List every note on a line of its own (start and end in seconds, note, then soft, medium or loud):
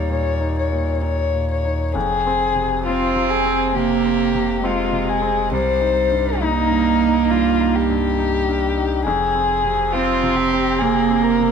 0.00 1.95 D#2 medium
0.00 1.98 D#2 soft
0.00 0.10 A#2 soft
0.00 1.49 G3 soft
0.00 0.41 D#4 soft
0.10 0.59 A#2 soft
0.10 0.56 C#5 soft
0.41 0.90 D#4 soft
0.58 1.03 C#5 soft
0.72 1.21 A#2 soft
1.02 1.52 D#4 soft
1.02 1.49 C#5 soft
1.34 1.83 A#2 soft
1.51 1.94 C#5 soft
1.65 1.95 D#4 soft
1.95 5.53 F1 medium
1.95 3.71 F2 medium
1.95 2.81 G#4 medium
2.27 2.74 C4 soft
2.55 3.03 C3 soft
2.85 3.71 C4 medium
2.85 3.33 C4 medium
2.85 3.31 F4 medium
3.16 3.63 C3 soft
3.30 3.77 G#4 medium
3.46 3.93 C4 medium
3.75 4.23 C3 soft
3.75 4.62 A#3 medium
3.75 4.67 G4 medium
4.05 4.52 C4 soft
4.35 4.81 C3 soft
4.64 5.55 G#3 medium
4.64 5.11 C4 soft
4.64 5.11 F4 medium
4.92 5.40 C3 soft
5.09 5.52 G#4 medium
5.22 5.52 C4 soft
5.51 9.07 C2 medium
5.51 7.25 C2 medium
5.51 6.43 G3 medium
5.51 6.43 C5 medium
5.81 6.29 D#4 soft
6.11 6.59 G2 soft
6.41 8.62 A#3 loud
6.41 7.32 D#4 medium
6.41 6.88 D#4 medium
6.70 7.17 G2 soft
7.01 7.48 D#4 medium
7.30 7.77 G2 medium
7.30 7.77 F4 medium
7.60 8.07 D#4 soft
7.76 9.04 G4 medium
7.90 8.36 G2 medium
8.19 8.65 D#4 soft
8.48 8.94 G2 medium
8.78 9.06 D#4 medium
9.05 11.52 F1 medium
9.05 10.77 F2 medium
9.05 9.94 G#4 medium
9.35 9.81 C4 soft
9.64 10.10 C3 soft
9.92 10.82 C4 loud
9.92 10.40 C4 medium
9.92 10.38 F4 medium
10.23 10.69 C3 medium
10.36 10.80 G4 medium
10.53 10.99 C4 medium
10.78 11.27 C3 medium
10.78 11.52 A#3 medium
10.78 11.25 G#4 medium
11.10 11.52 C4 soft
11.23 11.52 A#4 medium
11.40 11.52 C3 medium